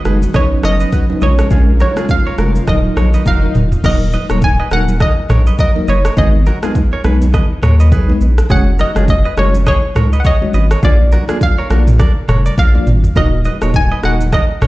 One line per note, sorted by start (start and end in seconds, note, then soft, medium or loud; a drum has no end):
0.00 0.32 D#3 medium
0.00 0.33 G#3 medium
0.00 1.20 B3 medium
0.00 0.33 F#4 medium
0.00 0.31 D#5 loud
0.05 0.27 F#1 loud
0.05 0.25 G#3 medium
0.05 0.25 D#4 medium
0.05 0.25 F#4 medium
0.05 0.17 G#4 medium
0.05 0.25 B4 medium
0.05 0.17 B4 medium
0.05 cross-stick medium
0.05 high conga medium
0.05 shaker medium
0.22 high conga medium
0.22 shaker medium
0.34 0.56 B1 loud
0.34 2.65 C#3 medium
0.34 1.03 F#3 medium
0.34 1.21 F#3 medium
0.34 1.03 C#4 medium
0.34 1.21 D#4 medium
0.34 1.03 D#4 medium
0.34 1.03 B4 loud
0.34 0.46 B4 medium
0.34 0.65 C#5 medium
0.34 0.46 D#5 medium
0.34 kick loud
0.34 cross-stick medium
0.34 low conga medium
0.34 shaker medium
0.63 0.85 F#1 medium
0.63 0.75 A#4 medium
0.63 0.75 C#5 medium
0.63 1.24 D#5 loud
0.63 cross-stick medium
0.63 high conga medium
0.63 shaker medium
0.80 0.89 B4 medium
0.80 0.89 D#5 medium
0.80 shaker medium
0.92 1.05 F#4 medium
0.92 1.04 B4 medium
0.92 kick medium
0.92 shaker medium
1.09 1.26 F#3 medium
1.09 1.20 C#4 medium
1.09 1.26 D#4 medium
1.09 1.26 B4 medium
1.09 high conga medium
1.21 1.43 A#1 loud
1.21 1.49 G#3 medium
1.21 2.66 G#3 medium
1.21 3.81 A#3 medium
1.21 1.49 C#4 medium
1.21 1.49 F4 medium
1.21 3.81 F4 medium
1.21 1.49 A#4 loud
1.21 1.34 A#4 medium
1.21 1.77 C#5 medium
1.21 1.33 D#5 medium
1.21 low conga medium
1.21 shaker soft
1.39 1.48 A#4 medium
1.39 1.47 C#5 medium
1.39 cross-stick loud
1.39 shaker medium
1.50 1.84 A#1 loud
1.50 1.71 G#3 medium
1.50 1.71 C#4 medium
1.50 1.71 F4 medium
1.50 1.63 F4 medium
1.50 1.62 G#4 medium
1.50 1.71 A#4 medium
1.50 kick loud
1.50 swell medium
1.50 low conga medium
1.50 shaker medium
1.80 1.92 F#4 medium
1.80 1.92 A#4 medium
1.80 2.11 C#5 medium
1.80 high conga medium
1.80 shaker medium
1.96 2.13 G#3 medium
1.96 2.13 C#4 medium
1.96 2.13 F4 medium
1.96 2.06 F4 medium
1.96 2.05 G#4 medium
1.96 2.13 A#4 medium
1.96 cross-stick medium
1.96 high conga medium
1.96 shaker medium
2.09 2.70 F5 medium
2.09 kick medium
2.09 shaker medium
2.27 2.35 A#4 medium
2.27 2.35 C#5 medium
2.38 2.59 F1 medium
2.38 2.58 G#3 medium
2.38 2.58 C#4 medium
2.38 2.58 F4 medium
2.38 2.51 F#4 medium
2.38 2.58 A#4 medium
2.38 2.50 A#4 medium
2.38 cross-stick medium
2.38 high conga medium
2.38 shaker medium
2.55 high conga medium
2.55 shaker medium
2.67 2.89 D#1 loud
2.67 3.83 D#3 medium
2.67 3.36 F#3 medium
2.67 3.83 F#3 medium
2.67 3.36 D#4 medium
2.67 3.36 F4 medium
2.67 3.36 A#4 loud
2.67 2.80 A#4 medium
2.67 2.79 D#5 medium
2.67 3.52 D#5 medium
2.67 kick loud
2.67 cross-stick medium
2.67 low conga medium
2.67 shaker medium
2.85 high conga medium
2.97 3.18 A#1 medium
2.97 3.09 A#4 medium
2.97 3.08 C#5 medium
2.97 cross-stick medium
2.97 high conga medium
2.97 shaker medium
3.14 3.23 B4 medium
3.14 3.22 D#5 medium
3.14 shaker medium
3.26 3.47 F#1 medium
3.26 3.46 F#4 medium
3.26 3.46 A#4 medium
3.26 3.81 F5 medium
3.26 kick medium
3.26 high tom medium
3.26 shaker medium
3.42 3.59 F#3 medium
3.42 3.59 D#4 medium
3.42 3.59 F4 medium
3.42 3.59 A#4 medium
3.42 high conga medium
3.55 3.76 D#1 medium
3.55 mid tom medium
3.55 low conga medium
3.55 shaker soft
3.72 floor tom medium
3.72 shaker medium
3.84 4.17 D#1 loud
3.84 4.04 F#3 medium
3.84 4.04 A#3 medium
3.84 4.04 D#4 medium
3.84 3.96 F#4 medium
3.84 4.04 A#4 loud
3.84 3.96 A#4 medium
3.84 4.45 D#5 loud
3.84 kick loud
3.84 crash medium
3.84 low conga medium
3.84 shaker medium
4.13 4.25 B4 medium
4.13 4.25 D#5 medium
4.13 high conga medium
4.13 shaker medium
4.29 4.60 D#1 medium
4.29 4.46 F#3 medium
4.29 4.46 A#3 medium
4.29 4.46 D#4 medium
4.29 4.46 A#4 medium
4.29 4.39 A#4 medium
4.29 4.38 C#5 medium
4.29 cross-stick medium
4.29 high conga medium
4.29 shaker medium
4.42 4.70 G#5 loud
4.42 kick medium
4.42 shaker medium
4.60 4.68 B4 medium
4.60 4.68 D#5 medium
4.71 5.05 D#1 medium
4.71 4.91 F#3 medium
4.71 4.91 A#3 medium
4.71 4.91 D#4 medium
4.71 4.83 F#4 medium
4.71 4.91 A#4 medium
4.71 4.83 A#4 medium
4.71 4.99 F#5 loud
4.71 cross-stick medium
4.71 high conga medium
4.71 shaker medium
4.88 high conga medium
4.88 shaker medium
5.00 5.13 A#4 medium
5.00 5.12 D#5 medium
5.00 5.59 D#5 medium
5.00 kick loud
5.00 cross-stick medium
5.00 low conga medium
5.00 shaker medium
5.29 5.51 A#1 loud
5.29 5.42 A#4 medium
5.29 5.41 C#5 medium
5.29 cross-stick medium
5.29 mid tom loud
5.29 high conga medium
5.29 shaker medium
5.47 5.55 B4 medium
5.47 5.55 D#5 medium
5.47 shaker medium
5.59 5.71 F#4 medium
5.59 5.70 A#4 medium
5.59 5.87 D#5 medium
5.59 kick loud
5.59 shaker medium
5.75 5.92 F#3 medium
5.75 5.92 A#3 medium
5.75 5.92 D#4 medium
5.75 5.92 A#4 medium
5.75 high conga medium
5.88 6.09 F#1 loud
5.88 6.00 B4 medium
5.88 6.19 C#5 medium
5.88 5.99 D#5 medium
5.88 shaker soft
6.05 6.14 A#4 medium
6.05 6.13 C#5 medium
6.05 cross-stick loud
6.05 shaker medium
6.17 6.50 G#1 loud
6.17 6.37 G#3 medium
6.17 6.37 B3 medium
6.17 6.37 D#4 medium
6.17 6.29 D#4 medium
6.17 6.29 G#4 medium
6.17 6.37 B4 loud
6.17 7.01 D#5 medium
6.17 kick loud
6.17 low conga medium
6.17 shaker medium
6.46 6.58 F#4 medium
6.46 6.58 A#4 medium
6.46 high conga medium
6.46 shaker medium
6.62 6.79 G#3 medium
6.62 6.79 B3 medium
6.62 6.80 D#4 medium
6.62 6.72 F4 medium
6.62 6.72 G#4 medium
6.62 6.80 B4 medium
6.62 cross-stick medium
6.62 high conga medium
6.62 shaker medium
6.75 kick medium
6.75 shaker medium
6.93 7.01 A#4 medium
6.93 7.01 C#5 medium
7.04 7.38 B1 loud
7.04 7.24 G#3 medium
7.04 7.24 B3 medium
7.04 7.24 D#4 medium
7.04 7.17 G#4 medium
7.04 7.16 B4 medium
7.04 7.25 B4 medium
7.04 cross-stick medium
7.04 high conga medium
7.04 shaker medium
7.22 high conga medium
7.22 shaker medium
7.34 7.46 B4 medium
7.34 7.45 D#5 medium
7.34 kick loud
7.34 cross-stick medium
7.34 low conga medium
7.34 shaker medium
7.63 7.93 D#2 loud
7.63 7.75 A#4 medium
7.63 7.74 C#5 medium
7.63 cross-stick loud
7.63 mid tom loud
7.63 high conga medium
7.63 shaker medium
7.80 7.89 B4 medium
7.80 7.88 D#5 medium
7.80 shaker medium
7.92 8.13 B1 medium
7.92 8.12 G#4 medium
7.92 8.11 B4 medium
7.92 kick loud
7.92 shaker medium
8.08 8.25 G#3 medium
8.08 8.25 B3 medium
8.08 8.25 D#4 medium
8.08 8.25 B4 medium
8.08 high conga medium
8.21 8.42 A#1 medium
8.21 shaker soft
8.38 cross-stick loud
8.38 shaker medium
8.50 8.83 F#1 loud
8.50 8.70 G#3 medium
8.50 8.70 C#4 medium
8.50 8.62 C#4 medium
8.50 8.70 F#4 medium
8.50 8.61 G#4 medium
8.50 8.70 C#5 loud
8.50 8.81 F#5 medium
8.50 kick loud
8.50 low conga medium
8.50 shaker medium
8.79 8.91 F#4 medium
8.79 8.90 A#4 medium
8.79 9.09 D#5 medium
8.79 high conga medium
8.79 shaker medium
8.95 9.26 F#1 loud
8.95 9.12 G#3 medium
8.95 9.12 C#4 medium
8.95 9.05 F4 medium
8.95 9.13 F#4 medium
8.95 9.04 G#4 medium
8.95 9.13 C#5 medium
8.95 cross-stick medium
8.95 high conga medium
8.95 shaker medium
9.08 9.39 D#5 medium
9.08 kick medium
9.08 shaker medium
9.25 9.34 B4 medium
9.25 9.33 D#5 medium
9.37 9.71 F#1 medium
9.37 9.57 G#3 medium
9.37 9.57 C#4 medium
9.37 9.57 F#4 medium
9.37 9.49 A#4 medium
9.37 9.49 C#5 medium
9.37 9.57 C#5 medium
9.37 9.52 C#5 medium
9.37 cross-stick medium
9.37 high conga medium
9.37 shaker medium
9.54 high conga medium
9.54 shaker medium
9.67 9.78 G#4 medium
9.67 10.16 C#5 medium
9.67 9.78 D#5 medium
9.67 kick loud
9.67 cross-stick medium
9.67 low conga medium
9.67 shaker medium
9.95 10.17 C#2 medium
9.95 10.08 A#4 medium
9.95 10.07 C#5 medium
9.95 cross-stick medium
9.95 mid tom loud
9.95 high conga medium
9.95 shaker medium
10.13 10.21 B4 medium
10.13 10.21 D#5 medium
10.13 shaker medium
10.20 10.25 F#5 medium
10.25 10.37 G#4 medium
10.25 10.36 C#5 medium
10.25 10.86 D#5 medium
10.25 kick loud
10.25 shaker medium
10.41 10.58 G#3 medium
10.41 10.58 C#4 medium
10.41 10.58 F#4 medium
10.41 10.58 C#5 medium
10.41 high conga medium
10.54 10.75 G#1 medium
10.54 10.66 B4 medium
10.54 10.65 D#5 medium
10.54 shaker soft
10.71 10.80 A#4 medium
10.71 10.79 C#5 medium
10.71 cross-stick loud
10.71 shaker medium
10.83 11.16 A#1 loud
10.83 11.03 A#3 medium
10.83 11.03 D4 medium
10.83 11.03 F4 medium
10.83 10.95 F4 medium
10.83 10.94 G#4 medium
10.83 11.03 D5 loud
10.83 11.44 D5 loud
10.83 kick loud
10.83 low conga medium
10.83 shaker medium
11.12 11.24 F#4 medium
11.12 11.24 A#4 medium
11.12 high conga medium
11.12 shaker medium
11.28 11.45 A#3 medium
11.28 11.45 D4 medium
11.28 11.45 F4 medium
11.28 11.38 F4 medium
11.28 11.37 G#4 medium
11.28 11.46 D5 medium
11.28 cross-stick loud
11.28 high conga medium
11.28 shaker medium
11.41 12.58 F5 medium
11.41 kick medium
11.41 shaker medium
11.58 11.67 A#4 medium
11.58 11.66 C#5 medium
11.70 12.04 A#1 medium
11.70 11.90 A#3 medium
11.70 11.90 D4 medium
11.70 11.90 F4 medium
11.70 11.82 F#4 medium
11.70 11.82 A#4 medium
11.70 11.90 D5 medium
11.70 cross-stick medium
11.70 high conga medium
11.70 shaker medium
11.87 mid tom loud
11.87 high conga medium
11.87 shaker medium
11.99 12.11 A#4 medium
11.99 12.11 D5 medium
11.99 kick loud
11.99 cross-stick medium
11.99 low conga medium
11.99 shaker medium
12.28 12.50 F1 medium
12.28 12.41 A#4 medium
12.28 12.40 C#5 medium
12.28 cross-stick medium
12.28 mid tom loud
12.28 high conga medium
12.28 shaker medium
12.46 12.54 A#4 medium
12.46 12.54 D5 medium
12.46 shaker medium
12.58 12.79 A#1 medium
12.58 12.78 F4 medium
12.58 12.77 A#4 medium
12.58 13.13 F5 loud
12.58 kick loud
12.58 high tom medium
12.58 shaker medium
12.74 12.91 A#3 medium
12.74 12.91 D4 medium
12.74 12.91 F4 medium
12.74 12.91 D5 medium
12.74 high conga medium
12.87 13.08 G#1 medium
12.87 mid tom medium
12.87 shaker soft
13.04 floor tom medium
13.04 shaker medium
13.16 13.49 D#1 loud
13.16 13.36 A#3 medium
13.16 13.36 D#4 medium
13.16 13.36 F#4 medium
13.16 13.28 F#4 medium
13.16 13.28 A#4 medium
13.16 13.36 D#5 loud
13.16 13.77 D#5 loud
13.16 kick loud
13.16 low conga medium
13.16 shaker medium
13.45 13.57 B4 medium
13.45 13.57 D#5 medium
13.45 high conga medium
13.45 shaker medium
13.61 13.92 D#1 medium
13.61 13.78 A#3 medium
13.61 13.78 D#4 medium
13.61 13.79 F#4 medium
13.61 13.71 A#4 medium
13.61 13.70 C#5 medium
13.61 13.79 D#5 medium
13.61 cross-stick medium
13.61 high conga medium
13.61 shaker medium
13.74 13.89 G#5 loud
13.74 kick medium
13.74 shaker medium
13.92 14.00 B4 medium
13.92 14.00 D#5 medium
14.03 14.37 D#1 medium
14.03 14.23 A#3 medium
14.03 14.23 D#4 medium
14.03 14.23 F#4 medium
14.03 14.15 F#4 medium
14.03 14.15 A#4 medium
14.03 14.23 D#5 medium
14.03 14.34 F#5 loud
14.03 cross-stick medium
14.03 high conga medium
14.03 shaker medium
14.20 high conga medium
14.20 shaker medium
14.33 14.45 A#4 medium
14.33 14.44 D#5 medium
14.33 14.67 D#5 loud
14.33 kick loud
14.33 cross-stick medium
14.33 low conga medium
14.33 shaker medium
14.61 14.67 A#1 loud
14.61 14.67 A#4 medium
14.61 14.67 C#5 medium
14.61 cross-stick loud
14.61 mid tom loud
14.61 high conga medium
14.61 shaker medium